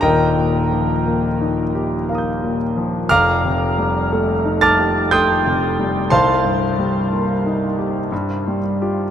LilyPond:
<<
  \new Staff \with { instrumentName = "Grand piano" } { \time 3/4 \key ees \lydian \tempo 4 = 59 << { <bes' ees'' g'' bes''>2~ <bes' ees'' g'' bes''>8 r8 | <f'' bes'' d''' f'''>4. <a'' d''' f''' a'''>8 <g'' c''' ees''' g'''>4 | <c'' f'' a'' c'''>2~ <c'' f'' a'' c'''>8 r8 | } \\ { r2 <f'' bes'' ees''' g'''>4 | r2. | r2. | } >> }
  \new Staff \with { instrumentName = "Grand piano" } { \clef bass \time 3/4 \key ees \lydian \tuplet 3/2 { <ees,, ees,>8 bes,8 f8 bes8 ees'8 g'8 bes8 bes,8 f8 } | \tuplet 3/2 { <f,, f,>8 c8 g8 a8 ees'8 g'8 a8 c8 g8 } | \tuplet 3/2 { c,8 g,8 g8 bes8 ees'8 g'8 g,8 g8 <f' g'>8 } | }
>>